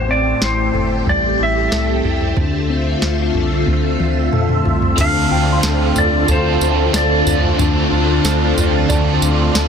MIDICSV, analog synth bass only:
0, 0, Header, 1, 2, 480
1, 0, Start_track
1, 0, Key_signature, -1, "minor"
1, 0, Tempo, 652174
1, 1747, Time_signature, 4, 2, 24, 8
1, 7124, End_track
2, 0, Start_track
2, 0, Title_t, "Analog synth bass"
2, 0, Program_c, 0, 38
2, 0, Note_on_c, 0, 33, 101
2, 247, Note_off_c, 0, 33, 0
2, 306, Note_on_c, 0, 33, 95
2, 518, Note_off_c, 0, 33, 0
2, 546, Note_on_c, 0, 31, 83
2, 758, Note_off_c, 0, 31, 0
2, 787, Note_on_c, 0, 33, 89
2, 998, Note_off_c, 0, 33, 0
2, 1029, Note_on_c, 0, 33, 94
2, 1239, Note_off_c, 0, 33, 0
2, 1267, Note_on_c, 0, 36, 90
2, 1478, Note_off_c, 0, 36, 0
2, 1504, Note_on_c, 0, 36, 78
2, 1717, Note_off_c, 0, 36, 0
2, 1743, Note_on_c, 0, 38, 94
2, 2168, Note_off_c, 0, 38, 0
2, 2222, Note_on_c, 0, 38, 90
2, 2436, Note_off_c, 0, 38, 0
2, 2461, Note_on_c, 0, 36, 90
2, 2675, Note_off_c, 0, 36, 0
2, 2707, Note_on_c, 0, 38, 95
2, 2918, Note_off_c, 0, 38, 0
2, 2945, Note_on_c, 0, 38, 99
2, 3157, Note_off_c, 0, 38, 0
2, 3186, Note_on_c, 0, 41, 91
2, 3398, Note_off_c, 0, 41, 0
2, 3426, Note_on_c, 0, 36, 91
2, 3638, Note_off_c, 0, 36, 0
2, 3663, Note_on_c, 0, 38, 109
2, 3876, Note_off_c, 0, 38, 0
2, 3909, Note_on_c, 0, 38, 101
2, 4120, Note_off_c, 0, 38, 0
2, 4145, Note_on_c, 0, 38, 110
2, 4357, Note_off_c, 0, 38, 0
2, 4384, Note_on_c, 0, 38, 88
2, 4597, Note_off_c, 0, 38, 0
2, 4625, Note_on_c, 0, 38, 113
2, 4837, Note_off_c, 0, 38, 0
2, 4863, Note_on_c, 0, 38, 98
2, 5076, Note_off_c, 0, 38, 0
2, 5103, Note_on_c, 0, 38, 88
2, 5316, Note_off_c, 0, 38, 0
2, 5345, Note_on_c, 0, 38, 102
2, 5557, Note_off_c, 0, 38, 0
2, 5589, Note_on_c, 0, 38, 111
2, 5800, Note_off_c, 0, 38, 0
2, 5827, Note_on_c, 0, 38, 102
2, 6038, Note_off_c, 0, 38, 0
2, 6065, Note_on_c, 0, 38, 100
2, 6277, Note_off_c, 0, 38, 0
2, 6306, Note_on_c, 0, 38, 101
2, 6518, Note_off_c, 0, 38, 0
2, 6550, Note_on_c, 0, 38, 107
2, 6760, Note_off_c, 0, 38, 0
2, 6785, Note_on_c, 0, 38, 104
2, 6997, Note_off_c, 0, 38, 0
2, 7027, Note_on_c, 0, 38, 103
2, 7124, Note_off_c, 0, 38, 0
2, 7124, End_track
0, 0, End_of_file